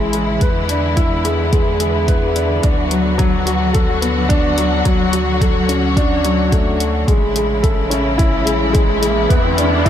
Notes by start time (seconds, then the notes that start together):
Already playing: A1 C#3 E3 G#3 C#4 E4 G#4 A4
0.13 G#4, closed hi-hat
0.41 E2 D3 B3 B4, kick, closed hi-hat
0.69 D4, closed hi-hat
0.96 E4, kick, closed hi-hat
1.25 G#3, closed hi-hat
1.52 G#3, kick, closed hi-hat
1.80 G#4, closed hi-hat
2.08 B4, kick, closed hi-hat
2.35 D4, closed hi-hat
2.63 D2 F#3 D4 F#4, kick, closed hi-hat
2.91 F#3, closed hi-hat
3.18 F#3, kick, closed hi-hat
3.46 F#4, closed hi-hat
3.73 A4, kick, closed hi-hat
4.01 B3, closed hi-hat
4.29 D4, kick, closed hi-hat
4.57 F#3, closed hi-hat
4.85 D2 F#3 C#5, kick, closed hi-hat
5.13 F#4, closed hi-hat
5.41 A4, kick, closed hi-hat
5.69 C#4, closed hi-hat
5.97 D4, kick, closed hi-hat
6.25 F#3, closed hi-hat
6.52 A3, kick, closed hi-hat
6.80 closed hi-hat
7.07 A1 C#3 E3 G#3 E4, kick, closed hi-hat, riser
7.36 G#4, closed hi-hat
7.63 A4, kick, closed hi-hat
7.90 C#4, closed hi-hat
8.18 E4, kick, closed hi-hat
8.46 G#3, closed hi-hat
8.73 G#3, kick, closed hi-hat
9.02 G#4, closed hi-hat
9.29 E2 D3 B3 B4, kick, closed hi-hat
9.57 D4, closed hi-hat
9.85 E4, kick, closed hi-hat